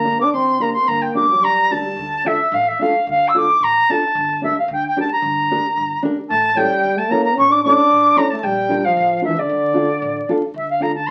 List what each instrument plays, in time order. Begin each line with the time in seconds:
Already playing: upright bass G1, trombone A#3, flute A#5
0.04 nylon-string guitar D4 G4 A#4
0.20 trombone D4, flute D6
0.32 upright bass D2, trombone C4, flute C6
0.59 trombone A#3, nylon-string guitar D4 G4 A#4, flute A#5
0.73 flute C6
0.81 trombone C4
0.87 upright bass G1, trombone A#3, flute A#5
1.01 flute G5
1.15 upright bass G2, nylon-string guitar D4 G4 A#4, flute D6
1.29 trombone F#3
1.42 upright bass F#2, trombone G3, flute A#5
1.70 upright bass D2, nylon-string guitar D4 G4 A#4, flute A5
1.97 upright bass D2
2.24 nylon-string guitar D4 F4 A4, flute E5
2.52 upright bass A1, flute F5
2.67 flute E5
2.79 nylon-string guitar D4 F4 A4, flute F5
3.07 upright bass D2, flute F5
3.28 flute E6
3.34 nylon-string guitar D4 F4 A4, flute D6
3.60 upright bass A1, flute A#5
3.89 nylon-string guitar D4 F4 A4, flute A5
4.15 upright bass G1
4.42 nylon-string guitar D4 G4 A#4, flute E5
4.58 flute F5
4.68 upright bass D2
4.72 flute G5
4.87 flute G5
4.96 nylon-string guitar D4 G4 A#4, flute A5
5.12 flute A#5
5.22 upright bass G1
5.51 nylon-string guitar D4 G4 A#4
5.77 upright bass G1
6.03 nylon-string guitar D4 G4 A#4
6.29 upright bass A1, trombone A3, flute A5
6.52 trombone A3, nylon-string guitar C#4
6.56 trombone G3, nylon-string guitar E4 A4, flute G5
6.84 upright bass E2
6.97 trombone A3, flute A5
7.09 trombone A#3, nylon-string guitar C#4 E4 A4, flute A#5
7.24 flute A#5
7.35 upright bass A1, trombone C#4, flute C#6
7.49 trombone D4, flute D6
7.63 nylon-string guitar C#4 E4 A4, trombone D4, flute D6
7.90 upright bass A1
8.16 nylon-string guitar C#4 E4 A4, flute A#5
8.30 trombone A3, flute A5
8.43 upright bass A#1, trombone G3, flute G5
8.69 nylon-string guitar D4 F4 A#4
8.84 trombone F3, flute F5
8.97 upright bass A1
9.22 nylon-string guitar D4 F4 A#4, flute E5
9.26 trombone E3
9.36 trombone D3, flute D5
9.49 upright bass D2
9.73 nylon-string guitar D4 F4 A4
10.02 upright bass A1
10.29 nylon-string guitar D4 F4 A4
10.54 upright bass D2, flute E5
10.69 flute F5
10.80 nylon-string guitar D4 F4 A4, flute A#5
10.94 flute A5
11.06 flute C6